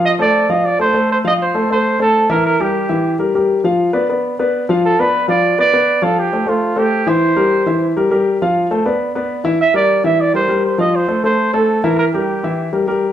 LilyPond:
<<
  \new Staff \with { instrumentName = "Trumpet" } { \time 4/4 \key f \major \tempo 4 = 201 ees''8 d''4 ees''8 d''8 c''4 c''8 | ees''8 c''4 c''4 a'4 bes'8 | bes'8 g'2 r4. | r1 |
a'8 b'4 d''4 d''4. | a'8 g'4 f'4 g'4 c''8~ | c''2~ c''8 r4. | r1 |
e''8 d''4 e''8 d''8 c''4 c''8 | ees''8 c''4 c''4 a'4 bes'8 | bes'8 g'2 r4. | }
  \new Staff \with { instrumentName = "Grand piano" } { \time 4/4 \key f \major <f f' f''>8 <a a' c''>4 <f f' f''>4 <a a' c''>8 <a a' c''>4 | <f f' f''>4 <a a' c''>8 <a a' c''>4 <a a' c''>4 <e e' e''>8~ | <e e' e''>8 <g g' bes'>4 <e e' e''>4 <g g' bes'>8 <g g' bes'>4 | <f f' f''>4 <b b' d''>8 <b b' d''>4 <b b' d''>4 <f f' f''>8~ |
<f f' f''>8 <b b' d''>4 <f f' f''>4 <b b' d''>8 <b b' d''>4 | <f f' f''>4 <a a' c''>8 <a a' c''>4 <a a' c''>4 <e e' e''>8~ | <e e' e''>8 <g g' bes'>4 <e e' e''>4 <g g' bes'>8 <g g' bes'>4 | <f f' f''>4 <a a' c''>8 <b b' d''>4 <b b' d''>4 <e e' e''>8 |
r8 <g g' bes'>4 <e e' e''>4 <g g' bes'>8 <g g' bes'>4 | <f f' f''>4 <a a' c''>8 <a a' c''>4 <a a' c''>4 <e e' e''>8~ | <e e' e''>8 <g g' bes'>4 <e e' e''>4 <g g' bes'>8 <g g' bes'>4 | }
>>